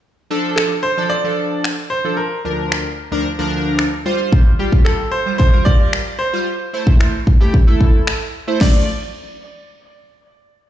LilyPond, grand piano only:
\new Staff \with { instrumentName = "Grand piano" } { \time 4/4 \key d \minor \tempo 4 = 112 r4 a'8 c''8 d''4. c''8 | bes'2. r4 | r4 a'8 c''8 c''8 d''4 c''8~ | c''2. r4 |
d''8 r2. r8 | }